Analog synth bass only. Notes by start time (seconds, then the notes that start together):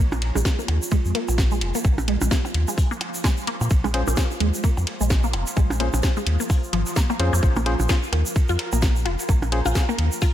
0.00 A#1
0.36 A#1
0.68 D#2
1.05 F2
1.29 A#1
1.61 F1
1.85 A#1
2.22 A#1
2.54 D#2
3.61 A#2
3.71 A#1
4.08 A#1
4.40 D#2
4.77 F2
5.01 A#1
5.33 F1
5.57 A#1
5.94 A#1
6.26 D#2
6.73 G#1
7.19 F2
7.33 F2
7.43 A#1
7.80 A#1
8.12 D#2
8.49 F2
8.73 A#1
9.05 F1
9.29 A#1
9.66 A#1
9.99 D#2